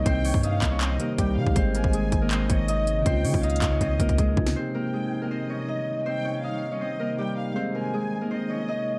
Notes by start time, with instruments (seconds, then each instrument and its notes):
Already playing: tine electric piano C3 C4 D#4 G4, ambient pad C3 D#3 G3 D#4, harp G#3 A#3 C#4 D#4 G#4 A#4 C#5 D#5
0.06 808-style bass C2, harp C4 C5, violin section G5, kick, closed hi-hat
0.25 harp C#4 C#5, open hi-hat
0.34 808-style bass G2, kick
0.43 harp D#4 D#5, violin section F5, closed hi-hat
0.62 808-style bass C2, kick, clap, closed hi-hat
0.72 harp C#4 C#5
0.81 harp C4 C5, violin section D#5, clap, closed hi-hat
0.97 tine electric piano C3 C4 D#4 G4, harp A#3 A#4, closed hi-hat
1.18 808-style bass C2, harp G3 G4, violin section G5, kick, closed hi-hat
1.37 808-style bass C3, violin section F5
1.46 808-style bass C2, kick
1.51 tine electric piano G#3 G#4
1.56 808-style bass G#1, ambient pad G#3, harp C4 C5, tine electric piano C5 D#5, kick, closed hi-hat
1.74 harp A#3 A#4, violin section G#5, closed hi-hat
1.84 808-style bass G#1, kick
1.93 harp G#3 G#4, closed hi-hat
2.12 808-style bass G#1, kick, closed hi-hat
2.21 harp A#3 A#4
2.31 harp C4 C5, violin section D#5, clap, closed hi-hat
2.50 808-style bass G#1, harp C#4 C#5, kick, closed hi-hat
2.68 harp D#4 D#5, closed hi-hat
2.87 closed hi-hat
3.02 808-style bass C#2, tine electric piano C#3 C#4, ambient pad C#3 F3, violin section G5, kick, closed hi-hat
3.06 harp C4 C5, tine electric piano D#4 F4
3.25 808-style bass C#3, harp C#4 C#5, open hi-hat
3.34 808-style bass C#2, kick
3.43 harp D#4 D#5, violin section F5, closed hi-hat
3.50 closed hi-hat
3.56 closed hi-hat
3.62 808-style bass C#2, kick, clap, closed hi-hat
3.71 harp C#4 C#5
3.81 808-style bass C#2, harp C4 C5, violin section D#5, kick, closed hi-hat
4.00 808-style bass C#2, harp A#3 A#4, kick, closed hi-hat
4.09 kick, closed hi-hat
4.18 harp G#3 G#4, kick, closed hi-hat
4.35 808-style bass C#2, tine electric piano C#3 C#4 D#4 F4, kick
4.46 snare
4.52 tine electric piano C3 C4
4.56 ambient pad C3 D#3 G3 D#4, harp C4 C5, tine electric piano D#4 G4
4.74 harp A#3 A#4, violin section G5
4.93 harp G#3 G#4
5.22 harp A#3 A#4
5.31 harp C4 C5, violin section D#5
5.50 harp C#4 C#5
5.68 harp D#4 D#5
6.06 harp C4 C5, violin section G5
6.25 harp C#4 C#5
6.43 harp D#4 D#5, violin section F5
6.72 harp C#4 C#5
6.81 harp C4 C5, violin section D#5
7.00 harp A#3 A#4
7.18 harp G3 G4, violin section G5
7.37 violin section F5
7.52 tine electric piano G#3 G#4, ambient pad G#3, harp C5
7.56 harp C4, tine electric piano C5 D#5
7.74 harp A#3 A#4, violin section G#5
7.94 harp G#3 G#4
8.21 harp A#3 A#4
8.31 harp C4 C5, violin section D#5
8.50 harp C#4 C#5
8.68 harp D#4 D#5